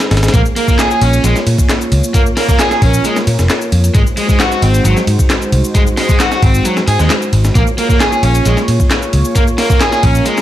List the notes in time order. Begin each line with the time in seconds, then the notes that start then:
Already playing: G#3 D#4 G#4 C5
0.00 snare, closed hi-hat, shaker
0.11 G#1, snare, closed hi-hat, ride
0.17 snare, closed hi-hat
0.23 snare, closed hi-hat, shaker
0.28 snare, closed hi-hat
0.33 A#1 A#3 F4 C#5, kick, closed hi-hat, shaker
0.46 shaker
0.56 A#3, closed hi-hat, ride
0.68 A#3, kick, shaker
0.79 G#4, snare, clap, closed hi-hat, shaker
0.91 G#4, shaker
1.01 A#1 C#4, closed hi-hat, ride
1.13 closed hi-hat, shaker
1.24 A#1 G#3, closed hi-hat, shaker
1.36 snare, shaker
1.47 A#2, closed hi-hat, ride
1.58 kick, shaker
1.69 snare, clap, closed hi-hat, shaker
1.81 shaker
1.92 C#2, closed hi-hat, ride
2.04 shaker
2.14 A#3 A#4, kick, closed hi-hat, shaker
2.26 shaker
2.37 A#3, snare, open hi-hat, ride
2.49 A#3, kick, shaker
2.59 G#4, snare, clap, closed hi-hat, shaker
2.71 G#4, snare, shaker
2.82 A#1 C#4, kick, closed hi-hat, ride
2.94 shaker
3.04 G#3, closed hi-hat, shaker
3.16 snare, shaker
3.27 A#2, closed hi-hat, ride
3.39 F1, snare, shaker
3.50 snare, clap, closed hi-hat, shaker
3.61 shaker
3.72 F2, closed hi-hat, ride
3.84 closed hi-hat, shaker
3.95 G#1 G#3 D#4 F#4 C5, kick, closed hi-hat, shaker
4.07 shaker
4.17 G#3, closed hi-hat, ride
4.29 G#3, kick, shaker
4.40 F#4, snare, clap, closed hi-hat, shaker
4.51 F#4, shaker
4.62 G#1 C4, closed hi-hat, ride
4.74 closed hi-hat, shaker
4.85 G#1 F#3, closed hi-hat, shaker
4.97 snare, shaker
5.07 G#2, closed hi-hat, ride
5.19 kick, shaker
5.30 snare, clap, closed hi-hat, shaker
5.42 shaker
5.52 C2, closed hi-hat, ride
5.64 shaker
5.75 G#3, kick, closed hi-hat, shaker
5.87 shaker
5.97 G#3, snare, open hi-hat, ride
6.09 G#3, kick, shaker
6.20 F#4, snare, clap, closed hi-hat, shaker
6.32 F#4, snare, shaker
6.42 G#1 C4, kick, closed hi-hat, ride
6.54 shaker
6.65 F#3, closed hi-hat, shaker
6.77 snare, shaker
6.87 G#2 G#4, closed hi-hat, ride
6.99 D#2 G#3, snare, shaker
7.10 snare, clap, closed hi-hat, shaker
7.22 shaker
7.33 G#1, closed hi-hat, ride
7.44 snare, shaker
7.55 A#1 A#3 F4 G#4 C#5, kick, closed hi-hat, shaker
7.67 shaker
7.78 A#3, closed hi-hat, ride
7.90 A#3, kick, shaker
8.00 G#4, snare, clap, closed hi-hat, shaker
8.12 G#4, shaker
8.23 A#1 C#4, closed hi-hat, ride
8.35 closed hi-hat, shaker
8.45 A#1 G#3, closed hi-hat, shaker
8.57 snare, shaker
8.68 A#2, closed hi-hat, ride
8.80 kick, shaker
8.91 snare, clap, closed hi-hat, shaker
9.02 shaker
9.13 C#2, closed hi-hat, ride
9.25 shaker
9.35 A#3 A#4, kick, closed hi-hat, shaker
9.47 shaker
9.58 A#3, snare, open hi-hat, ride
9.70 A#3, kick, shaker
9.81 G#4, snare, clap, closed hi-hat, shaker
9.92 G#4, snare, shaker
10.03 A#1 C#4, kick, closed hi-hat, ride
10.15 shaker
10.26 G#3, closed hi-hat, shaker
10.37 snare, shaker